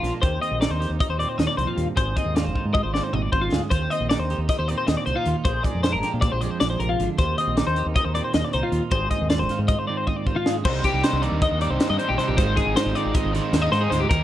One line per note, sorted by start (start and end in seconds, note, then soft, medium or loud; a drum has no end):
0.00 0.10 A#1 medium
0.00 0.23 A#2 medium
0.00 0.21 F3 medium
0.00 0.24 G#3 medium
0.00 0.21 D4 medium
0.00 0.13 F4 medium
0.00 0.23 F4 soft
0.04 snare soft
0.04 closed hi-hat medium
0.22 1.37 D#2 medium
0.22 0.38 D#2 loud
0.22 0.79 G4 medium
0.22 0.41 C5 medium
0.22 kick loud
0.22 closed hi-hat medium
0.42 1.19 C4 medium
0.42 0.61 D#5 medium
0.42 closed hi-hat medium
0.51 0.66 A#1 medium
0.61 1.00 D#4 medium
0.61 0.71 D5 medium
0.61 snare loud
0.61 closed hi-hat medium
0.70 0.86 D#2 medium
0.70 0.90 C5 medium
0.80 2.53 D#3 medium
0.80 1.95 G4 medium
0.80 snare soft
0.80 closed hi-hat medium
0.90 0.98 D#2 medium
1.00 2.35 D#4 medium
1.00 1.10 D#5 medium
1.00 kick loud
1.00 closed hi-hat medium
1.09 1.24 D#2 medium
1.09 1.19 C5 medium
1.19 1.97 A#2 medium
1.19 2.16 C4 medium
1.19 1.29 D5 medium
1.19 closed hi-hat medium
1.29 1.38 C5 medium
1.38 1.57 D#2 medium
1.38 1.46 D#2 medium
1.38 1.47 D#5 medium
1.38 snare loud
1.38 closed hi-hat medium
1.47 1.57 D5 medium
1.57 1.65 C2 medium
1.57 1.76 F2 medium
1.57 1.68 C5 medium
1.57 closed hi-hat medium
1.67 1.87 F4 medium
1.76 1.85 D#2 medium
1.76 1.95 G2 medium
1.76 closed hi-hat medium
1.95 2.12 G#1 loud
1.95 3.51 G#2 medium
1.95 2.55 G#4 medium
1.95 2.16 C5 medium
1.95 kick loud
1.95 closed hi-hat medium
2.16 2.92 C4 medium
2.16 2.35 D#5 medium
2.16 kick medium
2.16 closed hi-hat medium
2.25 2.48 D#2 medium
2.35 2.55 F4 medium
2.35 2.45 D5 medium
2.35 snare loud
2.35 closed hi-hat medium
2.45 2.53 F1 medium
2.45 2.65 C5 medium
2.55 2.92 D#3 medium
2.55 2.73 F4 medium
2.55 kick medium
2.65 2.80 G#2 medium
2.74 3.31 F4 medium
2.74 2.83 D#5 medium
2.74 kick loud
2.83 2.99 G#1 medium
2.83 2.93 C5 medium
2.93 3.68 D#3 medium
2.93 3.68 C4 soft
2.93 3.04 D5 medium
2.93 snare medium
3.04 3.13 C5 medium
3.13 3.28 G#1 medium
3.13 3.22 D#5 medium
3.13 mid tom medium
3.22 3.32 D5 medium
3.32 3.47 G#1 medium
3.32 3.69 F4 medium
3.32 3.42 C5 medium
3.32 kick medium
3.41 3.61 F4 medium
3.52 3.59 D2 medium
3.52 3.69 G#2 medium
3.52 3.69 G#4 medium
3.52 snare medium
3.70 3.86 D#2 medium
3.70 5.26 D#2 medium
3.70 3.82 F4 medium
3.70 3.90 C5 medium
3.70 kick loud
3.70 closed hi-hat medium
3.82 4.29 G4 medium
3.90 4.48 C4 medium
3.90 4.09 D#5 medium
3.90 closed hi-hat medium
4.00 4.15 A#1 medium
4.09 4.49 D#4 medium
4.09 4.19 D5 medium
4.09 snare loud
4.09 closed hi-hat medium
4.19 4.34 D#2 medium
4.19 4.39 C5 medium
4.30 5.46 D#3 medium
4.30 5.26 G4 medium
4.30 closed hi-hat medium
4.38 4.46 D#2 medium
4.49 4.60 C4 medium
4.49 4.58 D#5 medium
4.49 kick loud
4.49 closed hi-hat medium
4.59 4.73 D#2 medium
4.59 5.07 D#4 medium
4.59 4.68 C5 medium
4.68 5.45 A#2 medium
4.68 5.06 C4 medium
4.68 4.77 D5 medium
4.68 closed hi-hat medium
4.78 4.87 C5 medium
4.87 4.95 D#2 medium
4.87 4.97 D#5 medium
4.87 snare loud
4.87 closed hi-hat medium
4.97 5.05 D5 medium
5.06 5.14 C2 medium
5.06 5.17 C4 medium
5.06 5.16 C5 medium
5.06 closed hi-hat medium
5.16 5.45 D#4 soft
5.16 5.35 F4 medium
5.25 5.33 D#2 medium
5.25 5.45 D#2 medium
5.25 5.46 F4 medium
5.25 closed hi-hat medium
5.45 5.60 A#1 loud
5.45 6.42 A#2 medium
5.45 6.03 G#4 medium
5.45 5.63 C5 medium
5.45 kick loud
5.45 closed hi-hat medium
5.63 6.42 G#3 medium
5.63 5.83 D5 medium
5.63 kick medium
5.63 closed hi-hat medium
5.75 5.96 F2 medium
5.83 6.23 D4 medium
5.83 5.93 C5 medium
5.83 snare loud
5.83 closed hi-hat medium
5.92 6.01 G#1 medium
5.92 6.12 A#4 medium
6.03 7.16 F3 medium
6.03 7.16 G4 medium
6.03 snare soft
6.03 closed hi-hat medium
6.14 6.28 A#2 medium
6.21 6.33 C4 medium
6.21 6.32 D5 medium
6.21 kick loud
6.21 closed hi-hat medium
6.32 6.47 A#1 medium
6.32 7.19 D4 medium
6.32 6.41 C5 medium
6.41 7.17 F2 medium
6.41 7.19 G#3 medium
6.41 6.50 D5 medium
6.41 closed hi-hat medium
6.50 6.60 C5 medium
6.60 6.76 A#1 medium
6.60 6.80 A#2 medium
6.60 6.69 D5 medium
6.60 snare loud
6.60 closed hi-hat medium
6.70 6.80 C5 medium
6.80 6.94 A#1 medium
6.80 7.00 C3 medium
6.80 6.89 A#4 medium
6.80 closed hi-hat medium
6.89 7.08 F4 medium
6.99 7.07 G#1 medium
6.99 7.19 D3 medium
6.99 closed hi-hat medium
7.18 7.33 D#2 loud
7.18 8.71 D#2 medium
7.18 7.77 G4 medium
7.18 7.38 C5 medium
7.18 kick loud
7.18 closed hi-hat medium
7.38 8.14 C4 medium
7.38 7.57 D#5 medium
7.38 closed hi-hat medium
7.47 7.62 A#1 medium
7.57 7.96 D#4 medium
7.57 7.66 D5 medium
7.57 snare loud
7.57 closed hi-hat medium
7.67 7.81 D#2 medium
7.67 7.86 C5 medium
7.76 8.91 D#3 medium
7.76 8.72 G4 medium
7.76 closed hi-hat medium
7.86 7.93 D#2 loud
7.96 8.54 D#4 medium
7.96 8.05 D#5 medium
7.96 kick loud
7.96 closed hi-hat medium
8.05 8.20 D#2 medium
8.05 8.14 C5 medium
8.14 8.91 A#2 medium
8.14 8.92 C4 medium
8.14 8.24 D5 medium
8.14 closed hi-hat medium
8.24 8.34 C5 medium
8.34 8.42 D#2 medium
8.34 8.45 D#5 medium
8.34 snare loud
8.34 closed hi-hat medium
8.45 8.53 D5 medium
8.53 8.61 C2 medium
8.53 8.93 D#4 medium
8.53 8.63 C5 medium
8.53 closed hi-hat medium
8.63 8.82 F4 medium
8.72 8.79 D#2 medium
8.72 8.90 D#2 medium
8.72 8.92 F4 medium
8.72 closed hi-hat medium
8.91 9.07 G#1 loud
8.91 10.45 G#2 medium
8.91 9.49 D#3 medium
8.91 9.11 C4 medium
8.91 9.29 F4 medium
8.91 9.50 G#4 medium
8.91 9.10 C5 medium
8.91 kick loud
8.91 closed hi-hat medium
9.11 9.88 C4 medium
9.11 9.29 D#5 medium
9.11 kick medium
9.11 closed hi-hat medium
9.21 9.42 D#2 medium
9.30 9.49 F4 medium
9.30 9.39 D5 medium
9.30 snare loud
9.30 closed hi-hat medium
9.39 9.48 F1 medium
9.39 9.59 C5 medium
9.49 9.87 D#3 medium
9.49 9.69 F4 medium
9.49 snare soft
9.49 closed hi-hat medium
9.59 9.74 G#2 medium
9.68 10.25 F4 medium
9.68 9.79 D#5 medium
9.68 kick loud
9.68 closed hi-hat medium
9.79 9.87 C5 medium
9.87 10.63 D#3 medium
9.87 10.63 C4 medium
9.87 9.97 D5 medium
9.97 10.07 C5 medium
10.07 10.16 D#5 medium
10.07 kick medium
10.16 10.26 D5 medium
10.26 10.63 F4 medium
10.26 10.36 C5 medium
10.26 kick medium
10.36 10.55 F4 medium
10.46 10.63 G#2 medium
10.46 10.63 G#4 medium
10.46 snare medium
10.65 10.80 C2 loud
10.65 11.22 C3 medium
10.65 11.02 C3 medium
10.65 11.03 G3 medium
10.65 10.86 C4 medium
10.65 10.85 D4 loud
10.65 10.83 D#4 loud
10.65 10.84 C5 medium
10.65 kick loud
10.65 crash loud
10.84 11.05 C4 medium
10.84 11.04 D4 medium
10.84 11.06 D#4 medium
10.84 11.03 G4 medium
10.84 11.60 G4 medium
10.84 kick medium
10.84 closed hi-hat medium
10.94 11.01 C2 medium
11.03 11.42 C3 medium
11.03 11.42 G3 loud
11.03 11.25 C4 medium
11.03 11.23 D4 loud
11.03 11.22 D#4 loud
11.03 11.22 C5 medium
11.03 snare loud
11.03 closed hi-hat loud
11.13 11.27 C2 medium
11.22 12.95 D#3 medium
11.22 12.36 A#3 medium
11.22 11.61 C4 medium
11.22 11.60 D4 medium
11.22 11.59 D#4 medium
11.22 11.41 D5 medium
11.22 closed hi-hat medium
11.32 11.46 D#2 medium
11.42 11.61 D#5 medium
11.42 kick loud
11.42 closed hi-hat medium
11.51 11.66 D#2 medium
11.59 12.18 G2 medium
11.59 11.79 C4 medium
11.59 11.79 D4 medium
11.59 11.82 D#4 medium
11.59 12.35 G4 medium
11.59 11.70 D5 medium
11.59 closed hi-hat medium
11.70 11.77 C2 medium
11.70 11.89 C5 medium
11.79 12.18 G3 medium
11.79 12.19 C4 medium
11.79 12.19 D4 medium
11.79 12.21 D#4 medium
11.79 snare loud
11.79 closed hi-hat medium
11.90 11.97 G2 medium
11.90 11.98 D#5 medium
11.99 12.16 D4 medium
11.99 12.08 C5 medium
11.99 closed hi-hat medium
12.09 12.17 A#1 medium
12.09 12.18 G4 medium
12.17 12.34 C3 medium
12.17 12.36 C3 medium
12.17 12.37 G3 loud
12.17 12.37 C4 medium
12.17 12.35 D4 medium
12.17 12.37 D4 loud
12.17 12.28 C5 medium
12.17 closed hi-hat medium
12.21 12.39 D#4 loud
12.27 12.36 A#1 medium
12.27 12.37 G4 medium
12.37 12.60 G#1 loud
12.37 12.73 G#2 medium
12.37 13.90 G#2 medium
12.37 12.74 D#3 loud
12.37 12.57 G#3 loud
12.37 12.56 C4 loud
12.37 12.55 D#4 loud
12.37 12.76 F4 medium
12.37 12.56 C5 medium
12.37 kick loud
12.37 closed hi-hat loud
12.55 12.75 G#3 medium
12.55 12.76 C4 medium
12.55 12.78 D#4 medium
12.55 13.33 G#4 medium
12.55 12.76 G#4 medium
12.55 kick medium
12.55 closed hi-hat medium
12.67 12.74 G#1 medium
12.75 13.13 G#2 medium
12.75 13.14 D#3 medium
12.75 12.96 G#3 loud
12.75 12.94 C4 loud
12.75 12.93 D#4 loud
12.75 13.14 F4 medium
12.75 12.95 C5 medium
12.75 snare loud
12.75 closed hi-hat loud
12.86 12.93 G#1 medium
12.93 13.35 D#3 medium
12.93 13.34 G#3 medium
12.93 13.33 C4 medium
12.93 14.08 C4 medium
12.93 13.32 D#4 medium
12.93 13.14 D5 medium
12.93 closed hi-hat medium
13.06 13.13 G#1 medium
13.14 13.36 F4 medium
13.14 13.33 D#5 medium
13.14 kick loud
13.14 closed hi-hat medium
13.25 13.39 G#1 medium
13.32 14.08 D#3 medium
13.32 13.52 G#3 medium
13.32 13.53 C4 medium
13.32 13.54 D#4 medium
13.32 13.74 F4 medium
13.32 13.43 D5 medium
13.32 snare soft
13.32 closed hi-hat medium
13.43 13.62 C5 medium
13.52 13.67 D#2 loud
13.52 13.90 D#3 medium
13.52 13.91 G#3 medium
13.52 13.91 C4 medium
13.52 13.93 D#4 loud
13.52 snare loud
13.52 closed hi-hat loud
13.62 13.71 D#5 medium
13.72 13.86 G#2 loud
13.72 13.93 F4 medium
13.72 13.81 C5 medium
13.72 snare soft
13.72 closed hi-hat medium
13.81 13.90 G#4 medium
13.90 14.05 D2 medium
13.90 14.08 G#2 loud
13.90 14.08 G#2 medium
13.90 14.09 D#3 loud
13.90 14.09 G#3 loud
13.90 14.10 C4 loud
13.90 14.12 D#4 loud
13.90 14.12 F4 medium
13.90 14.00 C5 medium
13.90 snare soft
13.90 closed hi-hat medium
14.00 14.09 G4 medium
14.09 14.24 D#2 medium
14.09 14.24 D#2 loud
14.09 14.24 D#2 medium
14.09 14.24 A#2 loud
14.09 14.24 D#3 loud
14.09 14.24 G3 loud
14.09 14.24 A#3 loud
14.09 14.24 D#4 loud
14.09 14.24 G4 medium
14.09 14.24 A#4 medium
14.09 kick loud
14.09 closed hi-hat loud